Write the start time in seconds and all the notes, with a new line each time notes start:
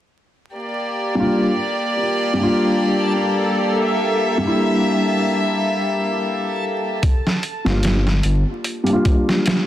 0.54 A#3 G4 A4 D5
1.15 G3 A#3 D4
1.20 F4
2.33 G3 A#3
2.40 D4 F4
3.79 E5
4.38 G3 A#3
4.44 D4 E4
7.03 kick, closed hi-hat
7.27 snare
7.43 closed hi-hat
7.65 G1 G3 A#3 D4, snare
7.69 F4
7.83 snare, closed hi-hat
8.07 snare
8.23 G1, closed hi-hat
8.64 closed hi-hat
8.83 G3 A#3, closed hi-hat
8.89 D4 F4
9.05 kick, closed hi-hat
9.29 snare
9.46 snare, closed hi-hat